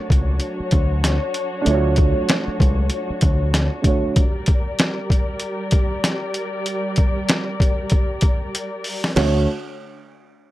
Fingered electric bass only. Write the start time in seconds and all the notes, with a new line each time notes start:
0.10 C#2
0.60 muted fingered electric bass stroke
0.73 D2
1.67 D2
2.48 muted fingered electric bass stroke
2.60 C#2
3.10 muted fingered electric bass stroke
3.23 D2
9.17 D2